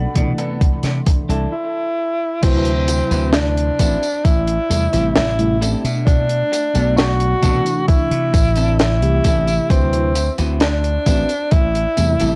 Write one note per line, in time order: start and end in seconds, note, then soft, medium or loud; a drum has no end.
0.00 0.10 D4 medium
0.00 1.48 A4 medium
0.00 1.49 D5 medium
0.00 0.59 F#5 medium
0.00 0.59 B5 medium
0.14 0.32 B2 loud
0.14 1.51 C3 medium
0.14 1.52 E3 medium
0.14 1.52 A3 medium
0.14 1.53 D4 loud
0.14 muted clean electric guitar stroke medium
0.14 kick medium
0.14 closed hi-hat loud
0.38 0.61 B3 medium
0.38 0.61 D4 medium
0.38 0.61 A4 medium
0.38 closed hi-hat soft
0.61 1.51 E5 medium
0.61 1.51 C6 medium
0.61 kick loud
0.61 closed hi-hat medium
0.83 1.00 C3 medium
0.83 snare soft
0.83 closed hi-hat medium
1.06 muted clean electric guitar stroke medium
1.06 kick loud
1.06 closed hi-hat loud
1.29 1.46 C2 medium
1.29 1.52 D4 medium
1.29 1.52 E4 medium
1.29 1.52 A4 medium
1.29 closed hi-hat soft
1.52 2.44 E4 loud
2.42 3.01 D2 medium
2.42 3.79 C3 loud
2.42 3.79 F#3 medium
2.42 3.33 C4 loud
2.42 3.80 E4 loud
2.42 3.80 B4 medium
2.42 kick loud
2.42 closed hi-hat medium
2.42 crash loud
2.42 tambourine soft
2.65 closed hi-hat medium
2.88 muted clean electric guitar stroke medium
2.88 closed hi-hat loud
2.88 tambourine medium
3.11 3.69 D2 medium
3.11 3.34 C4 medium
3.11 3.34 E4 medium
3.11 3.34 F#4 medium
3.11 3.34 B4 medium
3.11 closed hi-hat medium
3.11 tambourine soft
3.33 4.26 D4 loud
3.33 snare loud
3.33 closed hi-hat medium
3.33 tambourine soft
3.57 closed hi-hat medium
3.79 3.96 A1 loud
3.79 4.02 C4 medium
3.79 4.02 E4 medium
3.79 4.02 F#4 medium
3.79 4.02 B4 medium
3.79 kick medium
3.79 closed hi-hat loud
3.79 tambourine medium
4.03 closed hi-hat medium
4.03 tambourine soft
4.25 4.57 A1 medium
4.25 5.15 E4 loud
4.25 kick loud
4.25 closed hi-hat medium
4.25 tambourine soft
4.47 closed hi-hat medium
4.69 4.87 E2 loud
4.69 4.87 C3 medium
4.69 4.87 G3 medium
4.69 4.88 A3 medium
4.69 4.88 E4 loud
4.69 muted clean electric guitar stroke medium
4.69 closed hi-hat medium
4.69 tambourine medium
4.92 5.10 A1 medium
4.92 5.33 C3 medium
4.92 5.33 G3 medium
4.92 5.33 A3 medium
4.92 5.16 C4 medium
4.92 5.33 E4 medium
4.92 5.16 E4 medium
4.92 5.16 G4 medium
4.92 5.16 C5 medium
4.92 closed hi-hat medium
4.92 tambourine soft
5.16 5.74 A1 medium
5.16 5.76 E4 loud
5.16 snare loud
5.16 closed hi-hat medium
5.16 tambourine soft
5.37 5.55 C3 medium
5.37 5.55 G3 medium
5.37 5.56 A3 medium
5.37 5.56 E4 loud
5.37 closed hi-hat medium
5.61 6.69 A3 medium
5.61 5.84 C4 medium
5.61 6.70 D4 medium
5.61 5.84 E4 medium
5.61 5.84 G4 medium
5.61 5.84 A4 medium
5.61 closed hi-hat loud
5.61 tambourine medium
5.84 6.42 B2 medium
5.84 closed hi-hat medium
5.84 tambourine soft
6.06 6.99 D4 loud
6.06 kick loud
6.06 closed hi-hat medium
6.06 tambourine soft
6.29 closed hi-hat medium
6.52 muted clean electric guitar stroke medium
6.52 closed hi-hat loud
6.52 tambourine medium
6.73 7.33 B1 medium
6.73 7.37 B2 medium
6.73 7.37 F#3 medium
6.73 7.37 A3 medium
6.73 6.98 B3 medium
6.73 7.38 D4 medium
6.73 6.98 D4 medium
6.73 6.98 F#4 medium
6.73 6.98 A4 medium
6.73 closed hi-hat medium
6.73 tambourine soft
6.97 7.87 F#4 loud
6.97 snare loud
6.97 closed hi-hat medium
6.97 tambourine soft
7.20 closed hi-hat medium
7.40 7.59 B2 loud
7.40 8.95 C3 medium
7.40 8.96 E3 medium
7.40 8.96 A3 medium
7.40 7.66 B3 medium
7.40 7.66 D4 medium
7.40 8.97 D4 loud
7.40 7.66 F#4 medium
7.40 7.66 A4 medium
7.40 kick medium
7.40 closed hi-hat medium
7.40 tambourine medium
7.66 closed hi-hat medium
7.66 tambourine soft
7.88 8.75 E4 loud
7.88 kick loud
7.88 closed hi-hat medium
7.88 tambourine soft
8.11 8.35 C3 medium
8.11 closed hi-hat medium
8.34 9.02 A1 medium
8.34 muted clean electric guitar stroke medium
8.34 kick loud
8.34 closed hi-hat medium
8.34 tambourine medium
8.56 8.79 C4 medium
8.56 8.79 D4 medium
8.56 8.80 E4 medium
8.56 8.80 A4 medium
8.56 closed hi-hat medium
8.56 tambourine soft
8.79 9.72 E4 loud
8.79 snare loud
8.79 closed hi-hat medium
8.79 tambourine soft
9.01 9.18 C2 medium
9.01 9.67 C3 medium
9.01 9.67 E3 medium
9.01 9.67 A3 medium
9.01 9.68 G4 loud
9.01 closed hi-hat medium
9.24 9.57 A1 loud
9.24 9.47 C4 medium
9.24 9.48 D4 medium
9.24 9.47 E4 medium
9.24 9.48 A4 medium
9.24 kick medium
9.24 closed hi-hat loud
9.24 tambourine medium
9.48 closed hi-hat medium
9.48 tambourine soft
9.69 10.28 D2 loud
9.69 10.12 C3 medium
9.69 10.12 F#3 medium
9.69 10.34 C4 loud
9.69 10.13 E4 loud
9.69 10.12 B4 medium
9.69 kick loud
9.69 closed hi-hat medium
9.69 tambourine soft
9.93 closed hi-hat medium
10.15 muted clean electric guitar stroke medium
10.15 closed hi-hat loud
10.15 tambourine medium
10.38 10.97 D2 medium
10.38 10.61 C4 medium
10.38 10.61 E4 medium
10.38 10.61 F#4 medium
10.38 10.61 B4 medium
10.38 closed hi-hat medium
10.38 tambourine soft
10.60 11.53 D4 loud
10.60 snare loud
10.60 closed hi-hat medium
10.60 tambourine soft
10.84 closed hi-hat medium
11.06 11.23 A1 loud
11.06 11.29 C4 medium
11.06 11.29 E4 medium
11.06 11.29 F#4 medium
11.06 11.29 B4 medium
11.06 kick medium
11.06 closed hi-hat medium
11.06 tambourine medium
11.29 closed hi-hat medium
11.29 tambourine soft
11.51 11.85 A1 medium
11.51 12.36 E4 loud
11.51 kick loud
11.51 closed hi-hat medium
11.51 tambourine soft
11.75 closed hi-hat medium
11.96 12.14 E2 medium
11.96 12.14 C3 loud
11.96 12.15 G3 medium
11.96 12.15 A3 medium
11.96 12.15 E4 loud
11.96 muted clean electric guitar stroke medium
11.96 closed hi-hat loud
11.96 tambourine medium
12.19 12.36 A1 medium
12.19 12.36 C3 medium
12.19 12.36 G3 medium
12.19 12.36 A3 medium
12.19 12.36 C4 medium
12.19 12.36 E4 medium
12.19 12.36 G4 medium
12.19 12.36 A4 medium
12.19 closed hi-hat medium
12.19 tambourine soft